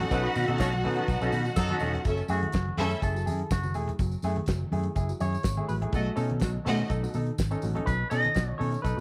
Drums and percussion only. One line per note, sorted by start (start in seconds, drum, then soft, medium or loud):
0.01 closed hi-hat soft
0.11 kick loud
0.11 closed hi-hat medium
0.11 tambourine medium
0.11 muted conga soft
0.35 open hi-hat medium
0.35 tambourine medium
0.35 muted conga soft
0.35 high conga soft
0.48 closed hi-hat soft
0.48 high conga loud
0.58 kick loud
0.58 snare loud
0.58 closed hi-hat medium
0.58 tambourine medium
0.58 muted conga soft
0.75 high conga medium
0.85 open hi-hat medium
0.85 high conga medium
0.85 low conga medium
0.96 closed hi-hat soft
1.08 kick loud
1.08 closed hi-hat medium
1.08 tambourine medium
1.21 tambourine soft
1.32 open hi-hat medium
1.32 tambourine medium
1.32 muted conga soft
1.32 high conga medium
1.45 closed hi-hat soft
1.45 tambourine soft
1.56 kick loud
1.56 snare loud
1.56 closed hi-hat medium
1.56 tambourine loud
1.68 tambourine soft
1.68 high conga medium
1.80 open hi-hat medium
1.80 tambourine medium
1.94 closed hi-hat soft
1.94 low conga medium
2.05 kick loud
2.05 closed hi-hat medium
2.05 tambourine medium
2.05 low conga medium
2.17 tambourine soft
2.28 open hi-hat medium
2.28 tambourine medium
2.43 closed hi-hat soft
2.43 high conga loud
2.52 kick loud
2.52 snare loud
2.52 closed hi-hat medium
2.52 tambourine loud
2.68 high conga medium
2.78 open hi-hat medium
2.78 high conga medium
2.78 low conga medium
2.90 closed hi-hat soft
2.90 tambourine soft
3.02 kick loud
3.02 closed hi-hat medium
3.02 tambourine medium
3.02 muted conga soft
3.16 tambourine soft
3.27 open hi-hat medium
3.27 tambourine medium
3.27 high conga medium
3.39 closed hi-hat soft
3.51 kick loud
3.51 snare loud
3.51 closed hi-hat medium
3.51 tambourine loud
3.51 muted conga soft
3.63 tambourine soft
3.63 high conga medium
3.74 open hi-hat medium
3.74 tambourine medium
3.74 muted conga soft
3.88 closed hi-hat soft
3.88 low conga medium
3.99 kick loud
3.99 closed hi-hat medium
3.99 tambourine medium
3.99 low conga medium
4.12 tambourine soft
4.22 open hi-hat medium
4.22 tambourine medium
4.36 closed hi-hat soft
4.36 high conga medium
4.46 kick loud
4.46 snare loud
4.46 closed hi-hat medium
4.46 tambourine loud
4.62 high conga medium
4.72 open hi-hat medium
4.72 high conga medium
4.72 low conga medium
4.83 closed hi-hat soft
4.96 kick loud
4.96 closed hi-hat medium
4.96 tambourine medium
5.09 tambourine soft
5.20 open hi-hat medium
5.20 tambourine medium
5.20 muted conga soft
5.20 high conga medium
5.33 closed hi-hat soft
5.33 tambourine soft
5.43 kick loud
5.43 snare loud
5.43 closed hi-hat medium
5.43 tambourine loud
5.57 high conga medium
5.69 open hi-hat medium
5.69 tambourine medium
5.82 closed hi-hat soft
5.82 low conga medium
5.93 kick loud
5.93 closed hi-hat medium
5.93 tambourine soft
5.93 muted conga soft
5.93 low conga medium
6.17 open hi-hat medium
6.17 tambourine medium
6.17 muted conga soft
6.30 closed hi-hat soft
6.30 high conga loud
6.40 kick loud
6.40 snare loud
6.40 closed hi-hat medium
6.40 tambourine medium
6.40 muted conga soft
6.57 high conga medium
6.66 open hi-hat medium
6.66 high conga medium
6.66 low conga medium
6.77 closed hi-hat soft
6.90 kick loud
6.90 closed hi-hat medium
6.90 tambourine soft
6.90 muted conga soft
7.04 tambourine soft
7.14 open hi-hat medium
7.14 tambourine medium
7.14 muted conga soft
7.14 high conga medium
7.27 closed hi-hat soft
7.38 kick loud
7.38 snare loud
7.38 closed hi-hat medium
7.38 tambourine loud
7.38 muted conga soft
7.51 tambourine soft
7.51 high conga medium
7.62 open hi-hat medium
7.62 tambourine medium
7.76 closed hi-hat soft
7.76 low conga medium
7.87 kick loud
7.87 closed hi-hat medium
7.87 tambourine medium
7.87 muted conga soft
7.87 low conga medium
8.11 open hi-hat medium
8.11 tambourine medium
8.11 muted conga soft
8.24 closed hi-hat soft
8.24 high conga loud
8.35 kick loud
8.35 snare loud
8.35 closed hi-hat medium
8.35 tambourine medium
8.52 high conga medium
8.61 open hi-hat medium
8.61 muted conga soft
8.61 high conga medium
8.61 low conga medium
8.72 closed hi-hat soft
8.72 tambourine soft
8.85 kick loud
8.85 closed hi-hat medium
8.85 tambourine medium